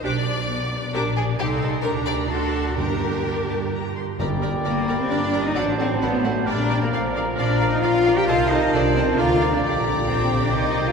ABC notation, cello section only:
X:1
M:3/4
L:1/16
Q:1/4=133
K:Gphr
V:1 name="Cello section"
D4 =B,4 D4 | [K:Gm] E4 D4 ^F4 | G8- G2 z2 | z4 B,3 C D3 E |
D2 C2 =B,2 A,2 D3 _B, | z4 D3 E F3 G | F2 E2 D2 C2 F3 D | z4 C3 D E3 F |]